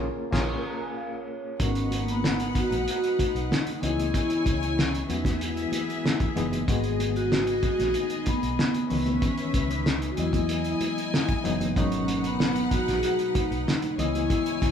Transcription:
Already playing: A#3 C#4 F4 G#4 A#4
0.31 A#1 A#3 C#4 F4 G#4 A#4, kick, snare, crash
0.48 C#6
0.66 A#5
0.80 G#5
0.97 F5
1.12 C#5
1.59 G#1 G#3 B3 C#4 D#4 F#4 A#4 B4 F#5, kick, closed hi-hat
1.75 closed hi-hat, muted conga
1.91 closed hi-hat, high conga
2.02 A#3
2.08 B3, closed hi-hat
2.24 snare, muted conga
2.39 closed hi-hat, muted conga
2.55 F#4, kick, closed hi-hat, low conga
2.71 A#1, closed hi-hat, high conga
2.88 F#4, closed hi-hat
3.03 closed hi-hat, muted conga
3.19 muted fingered electric bass stroke, kick, closed hi-hat, high conga
3.23 D#4
3.35 B1, closed hi-hat
3.51 D#4, snare, muted conga, high conga
3.66 closed hi-hat, high conga
3.82 C#2 E3 B3 C#4 E4 F#4 C#5 D#5 G#5, closed hi-hat, low conga
3.90 G#4
3.98 closed hi-hat, high conga
4.14 kick, closed hi-hat, muted conga
4.18 E4
4.30 closed hi-hat, muted conga
4.45 C#2, kick, closed hi-hat, high conga
4.63 closed hi-hat
4.77 C#4, snare, muted conga
4.95 closed hi-hat
5.08 E2 E3 F#3 B3 D#4 F#4 G#4 E5, closed hi-hat, low conga
5.15 G#3
5.25 kick, snare, closed hi-hat, high conga
5.41 E4, closed hi-hat
5.56 closed hi-hat, muted conga
5.72 closed hi-hat, high conga
5.90 closed hi-hat
6.05 snare, high conga
6.20 kick, closed hi-hat, high conga
6.36 F#1 E3 G#3 B3 D#4 G#4, closed hi-hat, low conga
6.52 closed hi-hat, high conga
6.67 G#1 D#3 G#3 A#3 B3 F#4 G#4 D#5, kick, closed hi-hat
6.84 closed hi-hat
6.99 closed hi-hat, high conga
7.16 F#4, closed hi-hat
7.32 snare
7.47 closed hi-hat, muted conga
7.63 F#4, kick, closed hi-hat, low conga
7.79 A#1, snare, closed hi-hat, high conga
7.94 D#4, closed hi-hat
8.10 closed hi-hat, muted conga
8.26 B3, muted fingered electric bass stroke, kick, closed hi-hat, high conga
8.43 B1, closed hi-hat
8.59 snare, high conga
8.74 closed hi-hat, muted conga, high conga
8.89 C#2 D#3 E3 G#3 B3 C#4 B4 E5, open hi-hat, low conga
9.06 closed hi-hat, high conga
9.22 C#4, kick, closed hi-hat, muted conga
9.38 closed hi-hat
9.53 C#2, kick, closed hi-hat, high conga
9.71 D#4, closed hi-hat
9.86 snare
10.02 closed hi-hat
10.11 F#4
10.17 E2 E3 F#3 G#3 B3 E4 D#5 G#5, closed hi-hat, low conga
10.33 kick, closed hi-hat, high conga
10.49 closed hi-hat
10.64 closed hi-hat
10.81 closed hi-hat, high conga
10.98 closed hi-hat
11.14 snare, muted conga, high conga
11.29 kick, closed hi-hat, muted conga
11.44 F#1 E3 F#3 G#3 B3 D#4, closed hi-hat, low conga
11.61 closed hi-hat, high conga
11.76 G#1 B2 F#3 G#3 C#4 D#4 A#4 B4 F#5, kick, closed hi-hat
11.92 closed hi-hat, muted conga
12.08 closed hi-hat, high conga
12.24 B3, closed hi-hat
12.40 snare, muted conga
12.56 closed hi-hat, muted conga
12.71 F#4, muted fingered electric bass stroke, kick, closed hi-hat, low conga
12.87 A#1, snare, closed hi-hat, high conga
12.98 G#4
13.03 F#4, closed hi-hat, muted conga
13.19 closed hi-hat, muted conga
13.35 D#4, muted fingered electric bass stroke, kick, closed hi-hat, high conga
13.51 B1, closed hi-hat
13.67 D#4, snare, high conga
13.82 closed hi-hat, high conga
13.97 C#2 C#3 E3 G#3 B3 E4 C#5 D#5 G#5, closed hi-hat, low conga
14.15 closed hi-hat, high conga
14.30 E4, kick, closed hi-hat, muted conga
14.46 closed hi-hat, muted conga
14.62 C#2, kick, closed hi-hat, high conga

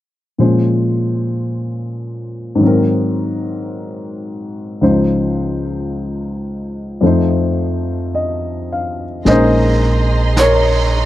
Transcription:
0.38 A#2 F3 G#3 C#4 C5
2.55 G#2 D#3
2.60 F#3 C4
2.66 A#4
4.81 C#2 C#3 F3 D#4 C5
7.01 F2 F3 A3 D#4
7.06 C5
8.15 D#5
8.73 F5
9.25 A#1 G#3 A#3 C#4 G#4 D#5 A#5 C6, brush sweep, snare
9.29 D#4 C5
10.37 A#4 C#5, brush sweep, snare, hi-hat pedal

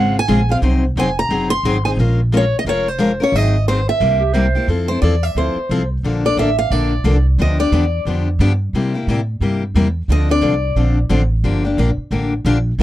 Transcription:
Already playing: G#1 C#3 G#3 C4 F4 G#4 F#5
0.19 G#5
0.28 A#1 C#3 G#3 C4 F4 G#4
0.49 C4 F4 G#4 F5
0.62 C2 C3 F#3 C4 D#4 G#4 C5
0.96 F1 C3 F#3 C4 D#4 G#4 C5 G#5
1.19 A#5
1.29 F#1 C3 F#3 C4 D#4 G#4 C5
1.50 C6
1.63 G#1 C3 F#3 C4 D#4 G#4 C5
1.85 C4 D#4 G#4 C5 G#5
1.97 A#1 F3 G#3 C#4 F4 A#4
2.32 F3 G#3 C#4 F4 A#4
2.37 C#5
2.59 D#5
2.65 F1 F3 G#3 C#4 F4 A#4
2.69 C#5
2.88 C5
2.98 F3 G#3 C#4 F4 A#4
3.20 C#4 F4 A#4 C#5
3.32 G#1 D#3 F#3 C4 D#4 G#4 D#5
3.68 D#3 F#3 C4 D#4 G#4 C5
3.89 E5
4.00 C2 C3 G3 A#3 E4 G4
4.20 G4
4.33 C3 G3 A#3 E4 G4 C5
4.55 A#3 E4 G4
4.68 F2 F3 C4 E4 A4
4.88 C4 E4 A4 C5
5.02 E2 F3 C4 E4 A4 D5
5.23 E5
5.35 D2 F3 C4 E4 A4 C5
5.55 muted upright bass stroke
5.69 C2 F3 C4 E4 A4
6.03 A#1 D3 F3 A#3 D4 A4
6.25 A#3 D4 A4 D5
6.37 A1 D3 F3 A#3 D4 A4 E5
6.59 F5
6.70 A#1 D3 F3 A#3 D4 A4 D5
7.04 C2 D3 F3 A#3 D4 A4
7.38 D2 D3 F3 B3 D4 G4 D#5
7.59 B3 D4 G4 D5
7.72 E2 D3 F3 B3 D4 G4
8.05 F2 D3 F3 B3 D4 G4
8.39 G2 D3 F3 B3 D4 G4
8.73 C3 G3 A#3 E4 G4
8.94 A#3 E4 G4
9.07 A2 C3 G3 A#3 E4 G4
9.41 G2 C3 G3 A#3 E4 G4
9.75 E2 C3 G3 A#3 E4 G4
10.08 D2 D3 F3 C4 D4 A4 D#5
10.29 C4 D4 A4 D5
10.41 C2 D3 F3 C4 D4 A4
10.75 A#1 D3 F3 C4 D4 A4
11.09 A1 D3 F3 C4 D4 A4
11.44 G1 D3 F3 A#3 D4 G4
11.64 A#3 D4 G4
11.77 A#1 D3 F3 A#3 D4 G4
11.97 muted upright bass stroke
12.11 A1 D3 F3 A#3 D4 G4
12.45 A#1 D3 F3 A#3 D4 G4
12.78 C2 C3 G3 A#3

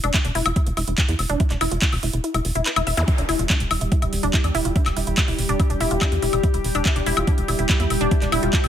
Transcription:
0.04 E1 D4, closed hi-hat, high woodblock
0.14 E4, kick, clap, closed hi-hat
0.25 E1 D4, closed hi-hat
0.35 E1 E4, open hi-hat
0.46 E1 F4, closed hi-hat, high woodblock
0.56 kick, closed hi-hat
0.67 E1, closed hi-hat
0.77 E1 E4, open hi-hat, high woodblock
0.88 E1 E4, closed hi-hat
0.98 E4, kick, clap, closed hi-hat
1.08 E2 E4, closed hi-hat
1.19 E1, open hi-hat, high woodblock
1.29 E1 D4, closed hi-hat
1.40 E4, kick, closed hi-hat
1.50 E1 D4, clap, closed hi-hat
1.61 E1 E4, open hi-hat, high woodblock
1.71 E1 F4, closed hi-hat
1.82 kick, clap, closed hi-hat
1.92 E1, open hi-hat, high woodblock
2.03 E1 E4, open hi-hat
2.13 E1 E4, closed hi-hat
2.24 E4, closed hi-hat
2.34 E1 E4, closed hi-hat, high woodblock
2.45 E1, open hi-hat
2.55 E1 E4, closed hi-hat
2.66 B4, clap, closed hi-hat
2.76 E1 E4, closed hi-hat, high woodblock
2.87 E1 E5, open hi-hat
2.97 E2 E4, closed hi-hat, zap
3.08 G3 E4 G4, kick, closed hi-hat
3.18 E1 D4, closed hi-hat
3.29 E1 E4, open hi-hat, high woodblock
3.39 E1 F4, closed hi-hat
3.50 D4, kick, clap, closed hi-hat
3.60 E1, closed hi-hat
3.71 E1 E4, open hi-hat, high woodblock
3.81 E1 E4, closed hi-hat
3.92 E4, kick, closed hi-hat
4.02 E1 E4, closed hi-hat, high woodblock
4.13 E1, open hi-hat
4.23 E1 D4, closed hi-hat
4.34 E4, kick, clap, closed hi-hat
4.44 E2 D4, closed hi-hat, high woodblock
4.55 E1 E4, open hi-hat
4.65 E1 F4, closed hi-hat
4.76 D4, kick, closed hi-hat
4.86 E1, clap, closed hi-hat, high woodblock
4.97 E1 E4, open hi-hat
5.07 E1 E4, closed hi-hat
5.18 E4, kick, clap, closed hi-hat, high woodblock
5.28 E1 E4, open hi-hat
5.39 E1, open hi-hat
5.49 E1 D4, closed hi-hat
5.60 E4, kick, closed hi-hat, high woodblock
5.70 E1 D4, closed hi-hat
5.80 E1 E4, open hi-hat
5.91 E1 F4, closed hi-hat
6.01 D4, kick, clap, closed hi-hat, high woodblock
6.12 E2, closed hi-hat
6.22 E1 E4, open hi-hat
6.33 E1 E4, closed hi-hat, high woodblock
6.43 E4, kick, closed hi-hat
6.54 E1 E4, closed hi-hat
6.64 E1, open hi-hat
6.75 E1 D4, closed hi-hat, high woodblock
6.85 E4, kick, clap, closed hi-hat
6.96 E1 D4, closed hi-hat
7.06 E1 E4, open hi-hat
7.17 E1 F4, closed hi-hat, high woodblock
7.27 D4, kick, closed hi-hat
7.38 E1, closed hi-hat
7.48 E1 E4, open hi-hat, high woodblock
7.59 E1 E4, closed hi-hat
7.69 E4, kick, clap, closed hi-hat
7.80 E2 E4, closed hi-hat
7.90 E1, open hi-hat, high woodblock
8.01 E1 D4, closed hi-hat
8.11 E4, kick, closed hi-hat
8.22 E1 D4, clap, closed hi-hat
8.32 E1 E4, open hi-hat, high woodblock
8.43 E1 F4, closed hi-hat
8.53 D4, kick, clap, closed hi-hat
8.64 E1, open hi-hat, high woodblock

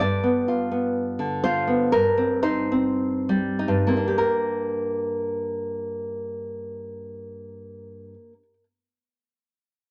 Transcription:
0.00 G2 D5
0.23 B3
0.48 F4
0.71 B3
1.19 D3
1.44 F4 C5
1.67 B3
1.92 G2 A#4
2.18 C4
2.42 D#4 C5
2.72 C4
3.29 G3
3.59 D#4
3.68 G2
3.87 A#3 C4
3.97 D4
4.08 G4
4.18 A#4

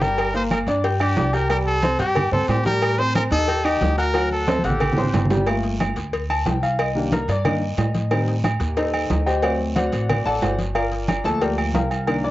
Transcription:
Already playing: G1
0.01 G3 G4 A#4 G5, low conga, short guiro
0.18 cowbell, high conga, low agogo, long guiro, claves
0.34 A#3 A#4 C5 A#5, cowbell, high conga
0.51 A#4, cowbell, high conga, low timbale, low agogo, short guiro, claves
0.67 G2 D4 D5 D6, cowbell, high conga, short guiro
0.84 G4 G5 G6, cowbell, high conga, low agogo, long guiro
1.00 D4 G4 D5 D6, high conga, low agogo, claves
1.16 C2, cowbell, high conga, low timbale, short guiro
1.33 G4 A#4 G5 G6, high conga, low agogo, short guiro
1.50 G3 G4 A#4 G5, cowbell, high conga, low agogo, long guiro, claves
1.66 A4, high conga
1.83 C4 C5 C6, cowbell, high conga, low timbale, low agogo, short guiro
1.99 G2 G4 G5 G6, cowbell, high conga, low agogo, short guiro
2.15 cowbell, high conga, low conga, low agogo, long guiro, claves
2.31 G2 C4 A4 C5 C6, high conga, low conga
2.48 A2 G4, cowbell, high conga, low timbale, low agogo, short guiro
2.65 G3 G4 A#4 G5, cowbell, high conga, short guiro
2.82 cowbell, high conga, low agogo, long guiro, claves
2.98 C4 C5 C6, cowbell, high conga
3.15 A#4, cowbell, high conga, low timbale, low agogo, short guiro, claves
3.31 D#2 D#4 A4 D#5 D#6, cowbell, high conga, short guiro
3.48 G4 G5 G6, cowbell, high conga, low agogo, long guiro
3.64 D#4 G4 D#5 D#6, high conga, low agogo, claves
3.81 D2, cowbell, high conga, low timbale, short guiro
3.98 F#4 A#4 F#5 F#6, high conga, low agogo, short guiro
4.14 F#3 F#4 F#5, cowbell, high conga, low agogo, long guiro, claves
4.31 A4, high conga
4.47 C4 C5 C6, cowbell, high conga, high timbale, low agogo, short guiro
4.59 high conga
4.63 A1 G4 A4 F#5 F#6, cowbell, low agogo, short guiro
4.70 low conga
4.80 cowbell, low conga, low agogo, long guiro, claves
4.93 low conga
4.97 A1 C4 C5 C6, low timbale
5.04 low conga
5.13 G1, cowbell, low conga, low timbale, low agogo, short guiro
5.25 low conga
5.30 G3 G4 G5, cowbell, low timbale, short guiro
5.37 low conga
5.46 A3 A#3 F4, cowbell, low agogo, long guiro, claves
5.63 cowbell, high conga
5.80 cowbell, high conga, low timbale, low agogo, short guiro, claves
5.96 D2, cowbell, high conga, short guiro
6.13 cowbell, high conga, low agogo, long guiro
6.30 A5, high conga, low agogo, claves
6.45 C2 G5, cowbell, high conga, low timbale, short guiro
6.63 F5, high conga, low agogo, short guiro
6.79 D#5, cowbell, high conga, low agogo, long guiro, claves
6.95 D#3 A#3 D4 G4, high conga
7.12 A#4, cowbell, high conga, low timbale, low agogo, short guiro
7.28 G2 D5, cowbell, high conga, low agogo, short guiro
7.45 D#3 A#3 D4 D#5, cowbell, high conga, low conga, low agogo, long guiro, claves
7.62 high conga
7.77 A2, cowbell, high conga, low timbale, low agogo, short guiro
7.95 cowbell, high conga, short guiro
8.11 D#3 G3 C4, cowbell, high conga, low agogo, long guiro, claves
8.27 cowbell, high conga
8.44 cowbell, high conga, low timbale, low agogo, short guiro, claves
8.60 D#2, cowbell, high conga, short guiro
8.77 D#4 A4 C5 D#5, cowbell, high conga, low agogo, long guiro
8.94 high conga, low agogo, claves
9.10 D2, cowbell, high conga, low timbale, short guiro
9.26 G4 C5 D#5 G5, high conga, low agogo, short guiro
9.42 F#3 A3 C4 F#4 C5 D5 F#5, cowbell, high conga, low agogo, long guiro, claves
9.60 high conga
9.76 F#4 C5 D5 F#5, cowbell, high conga, low timbale, low agogo, short guiro
9.92 A1, cowbell, high conga, low agogo, short guiro
10.09 cowbell, high conga, low conga, low agogo, long guiro, claves
10.25 A1 A4 D5 F#5 A5, high conga
10.41 G1 F#4 C5 D5 F#5, cowbell, high conga, low timbale, low agogo, short guiro
10.59 cowbell, high conga, short guiro
10.75 F4 A#4 D5 F5, cowbell, high conga, low agogo, long guiro, claves
10.92 cowbell, high conga
11.08 cowbell, high conga, low timbale, low agogo, short guiro, claves
11.24 D2 F3 A3 A#3 A4 A5, cowbell, high conga, short guiro
11.41 G4 A#4 D5 G5, cowbell, high conga, low agogo, long guiro
11.58 high conga, low agogo, claves
11.74 C2 A#4 F5 G5 A#5, cowbell, high conga, low timbale, short guiro
11.91 high conga, low agogo, short guiro
12.07 D#3 A#3 D4, cowbell, high conga, low agogo, long guiro, claves
12.24 D5 D6, high conga

